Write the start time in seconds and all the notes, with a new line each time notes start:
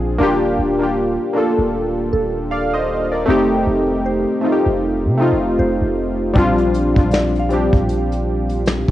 Already playing: A#1 C4 D4 F4 G#4, downlifter
0.18 D#1 A#3 D4 F4
0.23 G4
0.59 D#1
0.79 A#3 D4 F4
0.84 G4
1.34 A#3 D4 F4
1.38 A4
1.58 D#1
2.13 D#1 A4
2.51 D5 F5
2.74 C5 D#5
3.12 A#4 D5
3.26 F1 A3 C4 D#4
3.30 G4
3.67 F1
4.06 C5
4.41 A3 C4 D#4
4.46 F4
4.52 G4
4.66 F1
5.05 C3
5.18 A3 C4 D#4
5.22 F4
5.32 F1
5.59 F1 C5
5.82 F1
6.34 A#1 G3 C4 D4, kick, closed hi-hat
6.38 F4
6.58 closed hi-hat
6.74 closed hi-hat
6.94 A#1 G3 C4 D4, kick, closed hi-hat
6.99 F4
7.11 D5, snare, closed hi-hat
7.35 F5, closed hi-hat
7.49 G3 C4 D4, closed hi-hat
7.54 G4
7.73 A#1, kick, closed hi-hat
7.89 closed hi-hat
8.12 closed hi-hat
8.49 closed hi-hat
8.66 snare, closed hi-hat
8.88 closed hi-hat